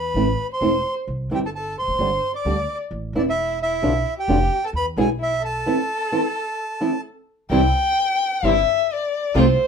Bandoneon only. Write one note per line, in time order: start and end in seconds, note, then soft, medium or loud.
0.00 0.47 B5 medium
0.53 0.95 C6 medium
1.35 1.39 G5 medium
1.46 1.50 A5 medium
1.55 1.76 A5 medium
1.79 2.32 C6 medium
2.36 2.78 D6 medium
3.18 3.22 D5 medium
3.29 3.59 E5 medium
3.62 4.14 E5 medium
4.19 4.65 G5 medium
4.66 4.70 A5 medium
4.76 4.86 B5 medium
5.00 5.10 G#5 medium
5.22 5.42 E5 medium
5.45 7.01 A5 medium